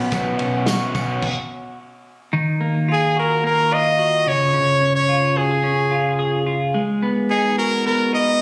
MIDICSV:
0, 0, Header, 1, 6, 480
1, 0, Start_track
1, 0, Tempo, 552486
1, 99, Time_signature, 4, 2, 24, 8
1, 7312, End_track
2, 0, Start_track
2, 0, Title_t, "Trumpet"
2, 0, Program_c, 0, 56
2, 2537, Note_on_c, 0, 68, 93
2, 2744, Note_off_c, 0, 68, 0
2, 2774, Note_on_c, 0, 70, 93
2, 2982, Note_off_c, 0, 70, 0
2, 3011, Note_on_c, 0, 70, 99
2, 3245, Note_on_c, 0, 75, 118
2, 3258, Note_off_c, 0, 70, 0
2, 3719, Note_on_c, 0, 73, 107
2, 3732, Note_off_c, 0, 75, 0
2, 4299, Note_off_c, 0, 73, 0
2, 4305, Note_on_c, 0, 73, 105
2, 4669, Note_on_c, 0, 68, 89
2, 4682, Note_off_c, 0, 73, 0
2, 5625, Note_off_c, 0, 68, 0
2, 6344, Note_on_c, 0, 68, 97
2, 6566, Note_off_c, 0, 68, 0
2, 6590, Note_on_c, 0, 70, 100
2, 6810, Note_off_c, 0, 70, 0
2, 6833, Note_on_c, 0, 70, 101
2, 7052, Note_off_c, 0, 70, 0
2, 7078, Note_on_c, 0, 75, 120
2, 7312, Note_off_c, 0, 75, 0
2, 7312, End_track
3, 0, Start_track
3, 0, Title_t, "Clean electric guitar"
3, 0, Program_c, 1, 27
3, 0, Note_on_c, 1, 47, 80
3, 0, Note_on_c, 1, 59, 58
3, 0, Note_on_c, 1, 61, 58
3, 0, Note_on_c, 1, 66, 71
3, 93, Note_off_c, 1, 47, 0
3, 103, Note_on_c, 1, 47, 79
3, 336, Note_off_c, 1, 61, 0
3, 347, Note_on_c, 1, 61, 58
3, 583, Note_off_c, 1, 66, 0
3, 586, Note_on_c, 1, 66, 69
3, 815, Note_off_c, 1, 61, 0
3, 825, Note_on_c, 1, 61, 62
3, 1110, Note_off_c, 1, 47, 0
3, 1111, Note_off_c, 1, 59, 0
3, 1111, Note_off_c, 1, 61, 0
3, 1546, Note_off_c, 1, 66, 0
3, 2024, Note_on_c, 1, 51, 79
3, 2263, Note_on_c, 1, 58, 60
3, 2507, Note_on_c, 1, 65, 64
3, 2748, Note_on_c, 1, 66, 66
3, 2977, Note_off_c, 1, 58, 0
3, 2987, Note_on_c, 1, 58, 68
3, 3222, Note_off_c, 1, 65, 0
3, 3226, Note_on_c, 1, 65, 61
3, 3454, Note_off_c, 1, 66, 0
3, 3465, Note_on_c, 1, 66, 69
3, 3701, Note_off_c, 1, 51, 0
3, 3705, Note_on_c, 1, 49, 81
3, 3751, Note_off_c, 1, 66, 0
3, 3752, Note_off_c, 1, 58, 0
3, 3931, Note_off_c, 1, 49, 0
3, 3942, Note_on_c, 1, 49, 89
3, 4181, Note_on_c, 1, 61, 61
3, 4417, Note_off_c, 1, 65, 0
3, 4421, Note_on_c, 1, 65, 64
3, 4662, Note_on_c, 1, 66, 68
3, 4785, Note_off_c, 1, 66, 0
3, 4785, Note_on_c, 1, 68, 59
3, 4886, Note_off_c, 1, 61, 0
3, 4896, Note_on_c, 1, 61, 70
3, 5125, Note_off_c, 1, 65, 0
3, 5135, Note_on_c, 1, 65, 66
3, 5368, Note_off_c, 1, 68, 0
3, 5378, Note_on_c, 1, 68, 72
3, 5606, Note_off_c, 1, 65, 0
3, 5616, Note_on_c, 1, 65, 61
3, 5860, Note_on_c, 1, 56, 84
3, 5862, Note_off_c, 1, 49, 0
3, 5907, Note_off_c, 1, 61, 0
3, 5907, Note_off_c, 1, 65, 0
3, 6103, Note_on_c, 1, 59, 65
3, 6349, Note_on_c, 1, 63, 69
3, 6582, Note_off_c, 1, 68, 0
3, 6586, Note_on_c, 1, 66, 71
3, 6820, Note_off_c, 1, 59, 0
3, 6830, Note_on_c, 1, 59, 71
3, 7060, Note_off_c, 1, 63, 0
3, 7063, Note_on_c, 1, 63, 67
3, 7303, Note_off_c, 1, 66, 0
3, 7312, Note_off_c, 1, 56, 0
3, 7312, Note_off_c, 1, 59, 0
3, 7312, Note_off_c, 1, 63, 0
3, 7312, End_track
4, 0, Start_track
4, 0, Title_t, "Overdriven electric guitar"
4, 0, Program_c, 2, 29
4, 0, Note_on_c, 2, 54, 70
4, 0, Note_on_c, 2, 59, 69
4, 0, Note_on_c, 2, 61, 78
4, 0, Note_on_c, 2, 66, 78
4, 103, Note_on_c, 2, 47, 87
4, 104, Note_off_c, 2, 59, 0
4, 107, Note_off_c, 2, 61, 0
4, 109, Note_on_c, 2, 51, 84
4, 110, Note_off_c, 2, 54, 0
4, 113, Note_on_c, 2, 54, 94
4, 116, Note_on_c, 2, 59, 92
4, 117, Note_on_c, 2, 61, 96
4, 120, Note_off_c, 2, 66, 0
4, 123, Note_on_c, 2, 66, 97
4, 579, Note_off_c, 2, 54, 0
4, 582, Note_off_c, 2, 47, 0
4, 583, Note_off_c, 2, 59, 0
4, 583, Note_on_c, 2, 54, 65
4, 589, Note_off_c, 2, 61, 0
4, 593, Note_on_c, 2, 59, 76
4, 599, Note_on_c, 2, 61, 75
4, 604, Note_off_c, 2, 66, 0
4, 608, Note_on_c, 2, 66, 78
4, 625, Note_off_c, 2, 51, 0
4, 813, Note_off_c, 2, 66, 0
4, 822, Note_off_c, 2, 54, 0
4, 823, Note_off_c, 2, 61, 0
4, 823, Note_on_c, 2, 66, 62
4, 827, Note_off_c, 2, 59, 0
4, 833, Note_on_c, 2, 61, 57
4, 840, Note_on_c, 2, 59, 49
4, 848, Note_on_c, 2, 54, 46
4, 1062, Note_off_c, 2, 66, 0
4, 1067, Note_off_c, 2, 61, 0
4, 1070, Note_off_c, 2, 59, 0
4, 1074, Note_off_c, 2, 54, 0
4, 7312, End_track
5, 0, Start_track
5, 0, Title_t, "Picked electric bass"
5, 0, Program_c, 3, 34
5, 109, Note_on_c, 3, 35, 103
5, 302, Note_off_c, 3, 35, 0
5, 351, Note_on_c, 3, 35, 88
5, 642, Note_off_c, 3, 35, 0
5, 823, Note_on_c, 3, 35, 98
5, 1019, Note_off_c, 3, 35, 0
5, 7312, End_track
6, 0, Start_track
6, 0, Title_t, "Drums"
6, 101, Note_on_c, 9, 51, 69
6, 102, Note_on_c, 9, 44, 61
6, 106, Note_on_c, 9, 36, 113
6, 112, Note_on_c, 9, 54, 37
6, 188, Note_off_c, 9, 44, 0
6, 188, Note_off_c, 9, 51, 0
6, 193, Note_off_c, 9, 36, 0
6, 199, Note_off_c, 9, 54, 0
6, 339, Note_on_c, 9, 51, 62
6, 426, Note_off_c, 9, 51, 0
6, 577, Note_on_c, 9, 38, 116
6, 578, Note_on_c, 9, 51, 67
6, 591, Note_on_c, 9, 54, 87
6, 663, Note_off_c, 9, 38, 0
6, 665, Note_off_c, 9, 51, 0
6, 678, Note_off_c, 9, 54, 0
6, 822, Note_on_c, 9, 51, 57
6, 824, Note_on_c, 9, 36, 94
6, 829, Note_on_c, 9, 54, 48
6, 909, Note_off_c, 9, 51, 0
6, 911, Note_off_c, 9, 36, 0
6, 916, Note_off_c, 9, 54, 0
6, 1063, Note_on_c, 9, 49, 90
6, 1064, Note_on_c, 9, 36, 101
6, 1149, Note_off_c, 9, 49, 0
6, 1151, Note_off_c, 9, 36, 0
6, 7312, End_track
0, 0, End_of_file